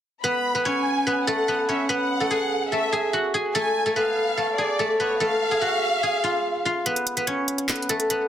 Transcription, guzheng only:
0.24 B3 B4
0.55 B3 B4
0.65 C#4 C#5
1.07 B3 B4
1.27 A3 A4
1.48 B3 B4
1.69 C#4 C#5
1.89 B3 B4
2.20 A3 A4
2.31 G#4 G#5
2.72 A3 A4
2.92 G#4 G#5
3.13 F#4 F#5
3.34 G#4 G#5
3.55 A3 A4
3.86 A3 A4
3.96 B3 B4
4.37 A3 A4
4.58 G#4 G#5
4.79 A3 A4
5.00 B3 B4
5.20 A3 A4
5.51 G#4 G#5
5.61 F#4 F#5
6.03 G#4 G#5
6.24 F4 F5
6.65 F4 F5
6.86 B3 B4
7.17 B3 B4
7.27 C#4 C#5
7.69 B3 B4
7.89 A3 A4
8.10 B3 B4

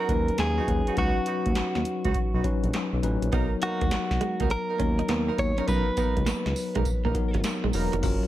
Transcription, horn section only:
0.00 F#3 B3 D#4 F#4
0.57 F#3 B3 D#4 F#4
0.87 F#3 B3 D#4 F#4
0.96 F#3 B3 D#4 F#4
1.26 F#3 B3 D#4 F#4
2.04 F#3 B3 D#4 F#4
2.34 F#3 B3 D#4 F#4
3.32 A#3 B3 D#4 A#4
3.62 A#3 B3 D#4 A#4
4.40 A#3 B3 D#4 A#4
4.69 A#3 B3 D#4 A#4
5.28 A#3 B3 D#4 A#4
5.58 A#3 B3 D#4 A#4
5.67 A#3 B3 D#4 A#4
5.97 A#3 B3 D#4 A#4
6.75 A#3 B3 D#4 A#4
7.04 A#3 B3 D#4 A#4
7.73 A#3 B3 D#4 A#4

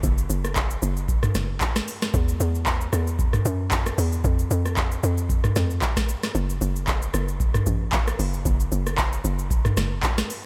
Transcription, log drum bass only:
0.03 F#1
0.30 F#1
0.82 F#1
1.35 F#1
2.14 E2
2.40 E2
2.93 E2
3.45 F#2
3.98 E2
4.24 F2
4.51 F2
5.03 F2
5.56 F2
6.35 F#1
6.61 F#1
7.14 F#1
7.66 A1
8.19 F#1
8.45 F#1
8.72 F#1
9.24 F#1
9.77 F#1

